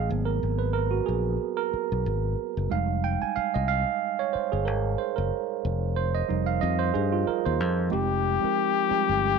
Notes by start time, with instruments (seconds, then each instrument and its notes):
Already playing: tine electric piano G#4 D#5 F5 G5
0.09 fingered electric bass G#1, tine electric piano F#3 A#3 B3
0.25 tine electric piano A#4
0.43 fingered electric bass G#1
0.59 tine electric piano B4
0.73 tine electric piano A#4
0.91 tine electric piano F#4
1.06 fingered electric bass A#1, tine electric piano G#4
1.57 tine electric piano A#4
1.74 muted fingered electric bass stroke
1.92 fingered electric bass B1
2.06 fingered electric bass G#1
2.57 fingered electric bass F#1
2.70 fingered electric bass F1, tine electric piano G3 G#3 D#4 F5
3.04 tine electric piano G5
3.22 tine electric piano G#5, muted fingered electric bass stroke
3.36 tine electric piano F5, muted fingered electric bass stroke
3.54 fingered electric bass C2, tine electric piano D#5
3.68 tine electric piano F5
4.19 tine electric piano C#5
4.33 tine electric piano C5, muted fingered electric bass stroke
4.52 fingered electric bass G1, tine electric piano G#4
4.65 fingered electric bass G#1, tine electric piano A#4
4.98 tine electric piano C5
5.16 fingered electric bass F#1, tine electric piano A#4
5.65 fingered electric bass F1
5.96 tine electric piano C5
6.15 tine electric piano D#5
6.28 fingered electric bass F1, tine electric piano F3 G3 D#4
6.46 tine electric piano F5
6.61 fingered electric bass F2, tine electric piano D#5
6.79 tine electric piano C5
6.94 fingered electric bass G2, tine electric piano G#4
7.12 tine electric piano F4
7.27 tine electric piano A#4, muted fingered electric bass stroke
7.45 fingered electric bass D#2, tine electric piano C5
7.60 fingered electric bass F2
7.89 fingered electric bass F1, tine electric piano F3 G#3 C4 D#4 G4, flugelhorn G4
8.41 tine electric piano F3 G#3 C4 D#4 A#4, muted fingered electric bass stroke
8.88 tine electric piano F3 G3 C4 D#4 G4, muted fingered electric bass stroke
8.96 tine electric piano G#3
9.09 fingered electric bass G1